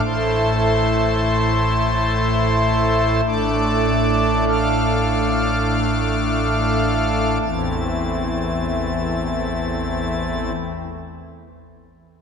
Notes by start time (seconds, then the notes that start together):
0.05 A1 A2 A3 E4 A4 C5 A5 C6
3.25 A1 A2 A3 D4 A4 D5 A5 D6
4.48 F5 D6 F6
7.41 A1 E2 E3 A3 C4 E4 A6